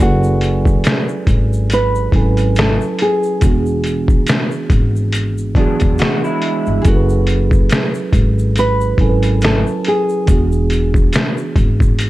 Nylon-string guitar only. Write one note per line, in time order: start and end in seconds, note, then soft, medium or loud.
0.02 1.73 F#4 medium
1.73 2.54 B4 loud
2.59 3.01 A4 medium
3.02 4.25 G#4 medium
6.82 6.86 G#4 medium
6.88 8.54 F#4 medium
8.59 9.45 B4 loud
9.45 9.88 A4 medium
9.88 11.11 G#4 medium